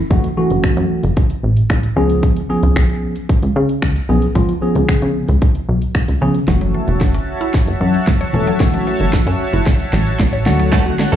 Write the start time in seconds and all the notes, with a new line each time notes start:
0.10 F#1 E3 A3 C#4 F#4, kick, closed hi-hat
0.24 closed hi-hat
0.37 E3 A3 C#4 F#4
0.50 F#1, closed hi-hat
0.64 F#2, finger snap, kick, closed hi-hat
0.77 F#2, closed hi-hat
1.03 F#1, closed hi-hat
1.17 kick, closed hi-hat
1.30 closed hi-hat
1.43 A1
1.57 closed hi-hat
1.70 A1, finger snap, kick, closed hi-hat
1.83 closed hi-hat
1.96 C#2 F3 B3 C#4 G#4
2.10 closed hi-hat
2.23 kick, closed hi-hat
2.36 closed hi-hat
2.49 F3 B3 C#4 G#4
2.63 C#2, closed hi-hat
2.76 B1, finger snap, kick, closed hi-hat
2.89 closed hi-hat
3.16 closed hi-hat
3.29 kick, closed hi-hat
3.42 C#2, closed hi-hat
3.56 C#3
3.69 closed hi-hat
3.82 C#2, finger snap, kick, closed hi-hat
3.96 closed hi-hat
4.09 B1 F3 B3 C#4 G#4
4.22 closed hi-hat
4.35 C#2 F3 B3 C#4 F4, kick, closed hi-hat
4.49 closed hi-hat
4.62 F3 B3 C#4 G#4
4.75 C#2, closed hi-hat
4.89 C#3, finger snap, kick, closed hi-hat
5.02 C#3, closed hi-hat
5.28 C#2, closed hi-hat
5.42 kick, closed hi-hat
5.55 closed hi-hat
5.68 B1
5.82 closed hi-hat
5.95 C#2, finger snap, kick, closed hi-hat
6.08 C#2, closed hi-hat
6.21 C#3 F3 B3 C#4 G#4
6.34 closed hi-hat
6.48 F#1 E3 A3 C#4 F#4 C#5 E5 A5, kick, snare, closed hi-hat
6.61 F#3, closed hi-hat
6.74 E3
6.88 E1, closed hi-hat
7.01 F#1, kick, snare, closed hi-hat
7.14 C#4, closed hi-hat
7.41 E4, closed hi-hat
7.54 kick, snare, closed hi-hat
7.67 F#1, closed hi-hat
7.81 F#2 E3
7.94 closed hi-hat
8.07 F#1 E3, kick, snare, closed hi-hat
8.21 C#5, closed hi-hat
8.33 E1 E3 A3 C#4 A4
8.47 F#3, closed hi-hat
8.60 F#1 E3 A3 C#4 F#4, kick, snare, closed hi-hat, shaker
8.74 F#3, closed hi-hat, shaker
8.87 E3, shaker
9.00 F#1, closed hi-hat, shaker
9.13 F#2, kick, snare, closed hi-hat, shaker
9.27 F#2 C#4, closed hi-hat, shaker
9.40 shaker
9.53 F#1 E4, closed hi-hat, shaker
9.66 kick, snare, closed hi-hat, shaker
9.80 closed hi-hat, shaker
9.93 A1 E3, snare, shaker
10.06 closed hi-hat, shaker
10.19 A1 E3, kick, snare, closed hi-hat, shaker
10.33 C#5, closed hi-hat, shaker
10.46 D2 D3 A3 C#4 F#4 F#5, snare, shaker
10.59 F#3, closed hi-hat, shaker
10.72 D3 A3 C#4 F#4 A4, kick, snare, closed hi-hat, shaker
10.86 F#3, muted clean electric guitar stroke, closed hi-hat, shaker
10.99 D3, muted clean electric guitar stroke, snare, open hi-hat, shaker
11.12 E2 C#4 F#4 A4, shaker